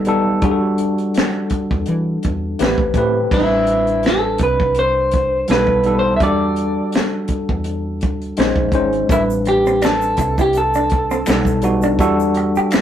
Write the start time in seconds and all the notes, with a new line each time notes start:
Already playing: B1 G3 B3 D#4 A4
0.05 G3 B3 D#4 A4, closed hi-hat
0.42 E2 G3 D4 F#4 G#4, kick, closed hi-hat
0.51 A4
0.78 closed hi-hat
0.98 closed hi-hat
1.14 finger snap, snare, closed hi-hat
1.50 muted fretless electric bass stroke, kick, closed hi-hat
1.71 E2, kick
1.86 E3, closed hi-hat
2.23 E2, kick, closed hi-hat
2.59 A1 A3 C4 G4 B4, finger snap, snare, closed hi-hat
2.78 A1, kick
2.94 A2 A3 C4 G4 B4, kick, closed hi-hat
3.31 A1 G3 C4 D4 E4 B4, kick, crash
3.67 closed hi-hat
3.87 closed hi-hat
4.03 A4, finger snap, snare, closed hi-hat
4.38 C2, kick, closed hi-hat
4.43 B4
4.60 kick
4.75 closed hi-hat
4.79 C5
5.11 kick, closed hi-hat
5.48 B1 G3 B3 D#4 A4 B4, finger snap, snare, closed hi-hat
5.67 kick
5.83 G3 B3 D#4 A4, closed hi-hat
5.99 C5
6.16 E5, kick, closed hi-hat
6.21 E2 G3 D4 F#4 A4 D5
6.56 closed hi-hat
6.92 finger snap, snare, closed hi-hat
7.28 muted fretless electric bass stroke, kick, closed hi-hat
7.49 E2, kick
7.64 closed hi-hat
8.01 D2, kick, closed hi-hat
8.22 closed hi-hat
8.37 A#1 G#3 C#4 D#4 C5, finger snap, snare, closed hi-hat
8.56 A#1, kick
8.72 G#1 G#3 C#4 D#4 C5, kick, closed hi-hat
8.93 closed hi-hat
9.09 A1 G3 A3 C4 D4 E4 B4, kick, closed hi-hat, shaker
9.30 shaker
9.45 G4, muted hollow-body jazz guitar stroke, closed hi-hat
9.66 C4, shaker
9.82 D4, finger snap, closed hi-hat, shaker
9.85 A4, finger snap, snare
10.02 shaker
10.17 C2, muted hollow-body jazz guitar stroke, kick, closed hi-hat, shaker
10.38 E4 G4, kick, closed hi-hat, shaker
10.53 closed hi-hat, shaker
10.57 A4
10.74 D4, shaker
10.90 muted hollow-body jazz guitar stroke, kick, closed hi-hat
11.11 C4, shaker
11.26 B1 G3 B3 D#4 A4, finger snap, closed hi-hat, shaker
11.29 finger snap, snare
11.45 kick, shaker
11.62 G3 B3 D#4 F#4, muted hollow-body jazz guitar stroke, closed hi-hat, shaker
11.82 D4, shaker
11.99 E2 G3 D4 E4 F#4 A4, kick, closed hi-hat, shaker
12.20 shaker
12.34 muted hollow-body jazz guitar stroke, closed hi-hat
12.55 G4, shaker
12.71 E4, finger snap, closed hi-hat, shaker
12.74 finger snap, snare